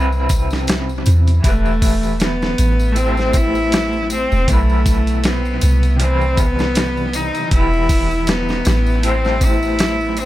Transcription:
Already playing: 808-style bass C2, clean electric guitar C3 C4 E4 B4
0.12 tambourine
0.29 kick, closed hi-hat, tambourine
0.50 snare, tambourine
0.67 snare, closed hi-hat, tambourine
0.89 tambourine
1.06 808-style bass E2, closed hi-hat, tambourine
1.27 closed hi-hat, tambourine
1.40 clean electric guitar E3 E4
1.44 808-style bass E1, cello A3, clean electric guitar G4, kick, closed hi-hat, tambourine
1.49 clean electric guitar B4
1.66 tambourine
1.82 kick, open hi-hat, tambourine
2.03 tambourine
2.20 cello B3, snare, closed hi-hat, tambourine
2.42 snare, tambourine
2.58 808-style bass A1, closed hi-hat, tambourine
2.79 tambourine
2.92 clean electric guitar A3 E4, closed hi-hat, tambourine
2.97 cello C4, clean electric guitar G4 C5
3.17 snare, tambourine
3.33 cello E4, kick, closed hi-hat, tambourine
3.55 tambourine
3.72 snare, closed hi-hat, tambourine
3.93 tambourine
4.10 cello C4, closed hi-hat, tambourine
4.32 808-style bass E1, tambourine
4.44 clean electric guitar B2 F#3, kick, closed hi-hat
4.48 808-style bass B1, cello A3, clean electric guitar E4, tambourine
4.53 clean electric guitar B4
4.69 tambourine
4.86 kick, closed hi-hat, tambourine
5.07 closed hi-hat, tambourine
5.24 cello B3, snare, closed hi-hat, tambourine
5.45 tambourine
5.61 808-style bass C2, closed hi-hat, tambourine
5.83 closed hi-hat, tambourine
5.96 clean electric guitar C3 G3, closed hi-hat, tambourine
6.02 clean electric guitar E3 B4, cello C4
6.21 tambourine
6.37 cello B3, kick, closed hi-hat, tambourine
6.59 snare, tambourine
6.75 snare, closed hi-hat, tambourine
6.97 tambourine
7.13 cello D#4, closed hi-hat, tambourine
7.35 closed hi-hat, tambourine
7.48 808-style bass E1, clean electric guitar E3 E4, kick, closed hi-hat, tambourine
7.53 cello E4, clean electric guitar G4 B4
7.73 tambourine
7.89 kick, open hi-hat, tambourine
8.11 tambourine
8.27 cello B3, snare, closed hi-hat, tambourine
8.49 snare, tambourine
8.65 808-style bass A1, snare, closed hi-hat, tambourine
8.86 tambourine
9.00 clean electric guitar A3 E4, closed hi-hat, tambourine
9.05 cello C4, clean electric guitar G4 C5
9.25 snare, tambourine
9.41 cello E4, kick, closed hi-hat, tambourine
9.63 tambourine
9.79 snare, closed hi-hat, tambourine
10.01 tambourine
10.17 cello C4, closed hi-hat, tambourine

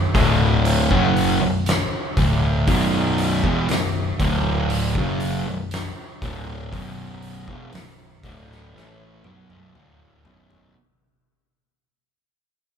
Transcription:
Already playing: picked electric bass B0
0.15 picked electric bass D1, distorted electric guitar D2 A2 D3, kick, open hi-hat
0.65 open hi-hat
0.91 picked electric bass F#1, distorted electric guitar F#2 C#3 F#3, kick
1.16 open hi-hat
1.41 picked electric bass B0, distorted electric guitar B1 F#2
1.66 snare, open hi-hat
2.17 picked electric bass D1, distorted electric guitar D2 A2 D3, kick, open hi-hat
2.68 picked electric bass B0, distorted electric guitar B1 F#2 B2, kick, open hi-hat
3.18 open hi-hat
3.44 picked electric bass E1, distorted electric guitar E2 B2, kick
3.69 picked electric bass B0, distorted electric guitar B1 F#2, snare, open hi-hat
4.20 picked electric bass D1, distorted electric guitar D2 A2 D3, kick, open hi-hat
4.70 open hi-hat
4.95 picked electric bass F#1, distorted electric guitar F#2 C#3 F#3, kick
5.20 open hi-hat
5.47 picked electric bass B0, distorted electric guitar B1 F#2
5.71 snare, open hi-hat
6.22 picked electric bass D1, distorted electric guitar D2 A2 D3, kick, open hi-hat
6.73 picked electric bass B0, distorted electric guitar B1 F#2 B2, kick, open hi-hat
7.22 open hi-hat
7.47 picked electric bass E1, distorted electric guitar E2 B2, kick
7.73 picked electric bass B0, distorted electric guitar B1 F#2, snare, open hi-hat
8.23 picked electric bass D1, distorted electric guitar D2 A2 D3, kick, open hi-hat
8.52 snare
8.74 picked electric bass A1, distorted electric guitar A2 E3 A3, snare
9.24 picked electric bass B1, distorted electric guitar B2 F#3, high tom
9.49 picked electric bass B0, distorted electric guitar B1 F#2, high tom
9.74 picked electric bass D1, distorted electric guitar D2 A2 D3, mid tom
10.25 picked electric bass B0, distorted electric guitar B1 F#2 B2, floor tom
10.51 floor tom

